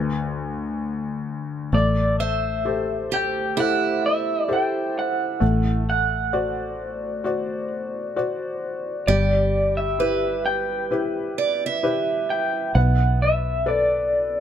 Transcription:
Already playing: felt piano D2, steel-string acoustic guitar B4, clean electric guitar B4
1.73 fingered electric bass A1, felt piano A3, clean electric guitar D5
2.20 steel-string acoustic guitar C5, clean electric guitar E5
2.65 felt piano G4 A4 C5
3.12 steel-string acoustic guitar G4, clean electric guitar G5
3.57 steel-string acoustic guitar E4, felt piano G4 A4 C5, clean electric guitar F#5
4.06 clean electric guitar E5
4.48 felt piano G4 A4 C5
4.53 clean electric guitar G5
4.99 clean electric guitar F#5
5.40 fingered electric bass A1, felt piano A3
5.90 clean electric guitar F#5
6.33 felt piano F#4 C5 D5
7.24 felt piano F#4 C5 D5
8.16 felt piano F#4 C5 D5
9.07 fingered electric bass G1, felt piano G3, steel-string acoustic guitar G4, clean electric guitar D5
9.77 clean electric guitar E5
9.99 felt piano E4 G4 B4, steel-string acoustic guitar B4
10.46 clean electric guitar G5
10.91 felt piano E4 G4 B4
11.38 steel-string acoustic guitar D5
11.66 steel-string acoustic guitar E5
11.83 felt piano E4 G4 B4
12.30 clean electric guitar G5
12.75 fingered electric bass B1, felt piano B3, clean electric guitar F#5
13.22 clean electric guitar E5
13.66 felt piano A4 B4 D5, clean electric guitar D5

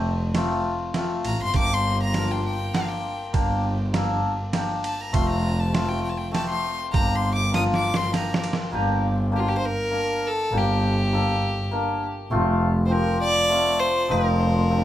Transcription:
Already playing: double bass F1
0.35 hammered dulcimer A3 C4 F4, snare, ride
0.94 hammered dulcimer A3 C4 F4, snare, ride
1.25 double bass A1, violin A#5, ride
1.40 double bass G1, violin C6
1.54 double bass G1, hammered dulcimer A#3 D4 G4, kick, ride
1.59 violin D6
1.74 violin C6
2.04 violin A#5
2.14 hammered dulcimer A#3 D4 F4, snare, ride
2.31 violin G5
2.46 violin G5
2.74 hammered dulcimer A#3 D4 G4, violin F5, snare, ride
2.89 violin G5
3.33 double bass G1, hammered dulcimer A#3 D4 G4, kick, ride
3.93 hammered dulcimer A#3 D4 A4, snare, ride
4.53 hammered dulcimer A#3 D4 G4, snare, ride
4.84 violin A5, ride
5.01 violin A#5
5.13 double bass F1, hammered dulcimer A3 C4 F4, violin C6, kick, ride
5.30 violin A#5
5.60 violin A5
5.73 hammered dulcimer A3 C4 F4, snare, ride
5.89 violin G5
6.03 violin G5
6.10 violin A5
6.17 violin G5
6.32 hammered dulcimer A3 C4 G4, violin A5, snare, ride
6.50 violin C6
6.92 double bass G1, hammered dulcimer A#3 D4 G4, violin A#5, kick, ride
7.16 violin C6
7.36 violin D6
7.52 hammered dulcimer A#3 D4 F4, violin D#6, snare, ride
7.74 violin D6, snare
7.94 violin C6, snare
8.11 hammered dulcimer A#3 D4 G4, snare, ride
8.16 violin A#5
8.34 snare
8.44 ride
8.53 snare
8.72 double bass G1, hammered dulcimer A#3 D4 G4
9.32 hammered dulcimer A#3 D4 G4
9.36 violin G4
9.40 violin F4
9.49 violin G4
9.58 violin C5
9.66 violin A#4
9.91 hammered dulcimer A#3 D4 A#4
10.27 violin A4
10.52 double bass G1, hammered dulcimer A#3 D4 G4
10.58 violin G4
11.12 hammered dulcimer A#3 D4 A4
11.71 hammered dulcimer A#3 D4 A#4
12.31 double bass F1, hammered dulcimer A3 C4 F4
12.86 hammered dulcimer F3 C4, violin C5
12.91 hammered dulcimer G4, violin A#4
13.21 violin D5
13.49 hammered dulcimer A3 C4 F4
13.80 violin C5
14.08 double bass F1, hammered dulcimer F3 C4 D#4, violin A#4
14.70 hammered dulcimer F3 C4 D4

